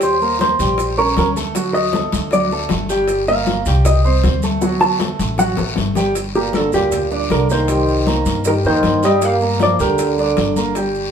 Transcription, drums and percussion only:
0.01 high bongo medium
0.01 high conga soft
0.01 long guiro medium
0.01 maracas medium
0.21 high conga soft
0.21 maracas soft
0.39 high bongo medium
0.39 high conga loud
0.39 short guiro medium
0.39 maracas soft
0.60 high conga soft
0.60 low conga medium
0.60 short guiro medium
0.60 maracas medium
0.78 high bongo medium
0.78 high conga soft
0.78 long guiro medium
0.78 maracas medium
0.98 high conga soft
0.98 maracas soft
1.17 high bongo medium
1.17 low bongo medium
1.17 high conga medium
1.17 short guiro medium
1.17 maracas soft
1.36 high conga medium
1.36 short guiro medium
1.36 maracas medium
1.55 high bongo medium
1.55 high conga soft
1.55 long guiro medium
1.55 maracas medium
1.74 high conga soft
1.74 maracas soft
1.93 high bongo medium
1.93 high conga loud
1.93 short guiro medium
1.93 maracas soft
2.12 high bongo soft
2.12 high conga loud
2.12 short guiro medium
2.12 maracas medium
2.31 high bongo medium
2.31 high conga soft
2.31 long guiro medium
2.31 maracas medium
2.50 high bongo soft
2.50 high conga soft
2.50 maracas soft
2.69 high bongo medium
2.69 low bongo medium
2.69 high conga medium
2.69 short guiro medium
2.69 maracas soft
2.89 high bongo soft
2.89 high conga soft
2.89 short guiro medium
2.89 maracas medium
3.08 high bongo medium
3.08 high conga soft
3.08 long guiro medium
3.08 maracas medium
3.27 high conga soft
3.27 maracas soft
3.46 high bongo medium
3.46 high conga medium
3.46 short guiro medium
3.46 maracas soft
3.66 high conga soft
3.66 low conga medium
3.66 short guiro medium
3.66 maracas medium
3.85 high bongo medium
3.85 high conga soft
3.85 low conga medium
3.85 long guiro medium
3.85 maracas medium
4.04 high conga soft
4.04 maracas soft
4.23 high bongo medium
4.23 low bongo medium
4.23 high conga medium
4.23 short guiro medium
4.23 maracas soft
4.42 high conga medium
4.42 short guiro medium
4.42 maracas medium
4.61 high bongo loud
4.61 long guiro medium
4.61 maracas medium
4.80 high bongo medium
4.80 high conga soft
4.80 maracas soft
4.99 high bongo medium
4.99 high conga loud
4.99 short guiro medium
4.99 maracas soft
5.19 high conga medium
5.19 short guiro medium
5.19 maracas medium
5.38 low bongo medium
5.38 long guiro medium
5.38 maracas medium
5.57 low bongo loud
5.57 high conga soft
5.57 maracas soft
5.76 low bongo medium
5.76 high conga medium
5.76 short guiro medium
5.76 maracas soft
5.95 low bongo loud
5.95 high conga soft
5.95 short guiro medium
5.95 maracas medium
6.15 high bongo medium
6.15 high conga soft
6.15 long guiro medium
6.15 maracas medium
6.35 high conga soft
6.35 maracas soft
6.53 high bongo medium
6.53 high conga medium
6.53 short guiro medium
6.53 maracas soft
6.72 high conga soft
6.72 low conga medium
6.72 short guiro medium
6.72 maracas medium
6.92 high bongo medium
6.92 high conga soft
6.92 low conga medium
6.92 long guiro medium
6.92 maracas medium
7.11 high conga soft
7.11 maracas soft
7.30 high bongo medium
7.30 low bongo medium
7.30 high conga medium
7.30 short guiro medium
7.30 maracas soft
7.50 short guiro medium
7.50 maracas medium
7.68 high bongo medium
7.68 high conga soft
7.68 long guiro medium
7.68 maracas medium
7.87 high conga soft
7.87 maracas soft
8.07 high bongo medium
8.07 high conga loud
8.07 short guiro medium
8.07 maracas soft
8.26 high bongo soft
8.26 high conga medium
8.26 short guiro medium
8.26 maracas medium
8.45 high bongo medium
8.45 high conga soft
8.45 long guiro medium
8.45 maracas medium
8.64 high bongo soft
8.64 high conga soft
8.64 maracas soft
8.83 high bongo medium
8.83 low bongo medium
8.83 high conga medium
8.83 short guiro medium
8.83 maracas soft
9.02 high bongo soft
9.02 high conga soft
9.02 short guiro medium
9.02 maracas medium
9.22 high bongo medium
9.22 high conga soft
9.22 long guiro medium
9.22 maracas medium
9.40 high conga soft
9.40 maracas soft
9.59 high bongo medium
9.59 high conga loud
9.59 short guiro medium
9.59 maracas soft
9.79 high conga soft
9.79 low conga medium
9.79 short guiro medium
9.79 maracas medium
9.98 high bongo medium
9.98 long guiro medium
9.98 maracas medium
10.18 high conga soft
10.18 maracas soft
10.37 high bongo medium
10.37 low bongo medium
10.37 high conga medium
10.37 short guiro medium
10.37 maracas soft
10.56 high conga medium
10.56 short guiro medium
10.56 maracas medium
10.75 high bongo medium
10.75 long guiro medium
10.75 maracas medium
10.95 high conga soft
10.95 maracas soft

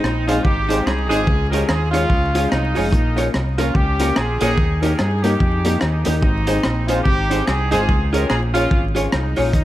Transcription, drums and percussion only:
0.04 cross-stick loud
0.29 closed hi-hat medium
0.45 kick loud
0.70 closed hi-hat medium
0.87 cross-stick loud
1.11 closed hi-hat medium
1.27 kick loud
1.53 closed hi-hat medium
1.69 cross-stick loud
1.94 closed hi-hat medium
2.10 kick loud
2.35 closed hi-hat medium
2.52 cross-stick loud
2.76 open hi-hat medium
2.93 kick loud
2.93 hi-hat pedal medium
3.18 closed hi-hat medium
3.34 cross-stick medium
3.58 closed hi-hat medium
3.75 kick loud
4.00 closed hi-hat medium
4.16 cross-stick loud
4.41 closed hi-hat medium
4.58 kick loud
4.83 closed hi-hat medium
4.99 cross-stick loud
5.24 closed hi-hat medium
5.40 kick loud
5.65 closed hi-hat medium
5.81 cross-stick loud
6.05 closed hi-hat medium
6.23 kick loud
6.47 closed hi-hat medium
6.63 cross-stick loud
6.88 closed hi-hat medium
7.05 kick loud
7.31 closed hi-hat medium
7.47 cross-stick loud
7.72 closed hi-hat medium
7.89 kick loud
8.14 closed hi-hat medium
8.30 cross-stick loud
8.55 closed hi-hat medium
8.71 kick loud
8.96 closed hi-hat medium
9.12 cross-stick loud
9.36 open hi-hat medium
9.53 kick loud
9.53 hi-hat pedal medium

